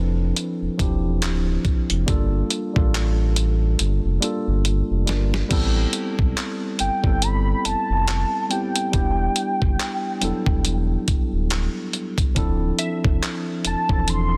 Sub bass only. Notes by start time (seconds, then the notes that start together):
Already playing: F1
0.62 E1
0.79 E1
1.23 D1
1.90 F1
2.08 G1
2.76 A1
3.80 G1
4.05 F1
4.48 G1
4.91 F1
5.08 G1
5.51 A1
6.19 B1
6.80 G1
7.04 G1
7.65 F1
7.90 F1
8.94 E1
9.62 F#1
10.22 E1
10.47 E1
11.08 D1
11.33 D1
12.36 D1
13.05 F1
13.65 E1
13.90 E1